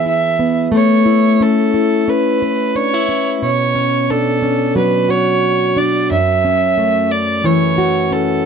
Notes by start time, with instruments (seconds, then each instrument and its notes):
Already playing: steel-string acoustic guitar E3 B3 G#4
0.06 steel-string acoustic guitar E4, violin E5
0.39 steel-string acoustic guitar B3
0.72 steel-string acoustic guitar A3, violin C#5
1.06 steel-string acoustic guitar E4
1.40 steel-string acoustic guitar C#4, violin A4
1.74 steel-string acoustic guitar E4
2.08 steel-string acoustic guitar C#4, violin B4
2.42 steel-string acoustic guitar B4
2.75 steel-string acoustic guitar D4, violin C#5
2.94 steel-string acoustic guitar E4
3.09 steel-string acoustic guitar C#4
3.42 steel-string acoustic guitar B2, violin C#5
3.75 steel-string acoustic guitar C#4
4.10 steel-string acoustic guitar D4, violin A4
4.42 steel-string acoustic guitar C#4
4.75 steel-string acoustic guitar F#3, violin B4
5.09 steel-string acoustic guitar F#4, violin C#5
5.76 steel-string acoustic guitar D4, violin D5
6.11 steel-string acoustic guitar F#2, violin E5
6.45 steel-string acoustic guitar C#4
6.77 steel-string acoustic guitar A3
7.12 violin D5
7.44 steel-string acoustic guitar E3, violin C#5
7.78 steel-string acoustic guitar F#4
8.12 steel-string acoustic guitar C#4, violin A4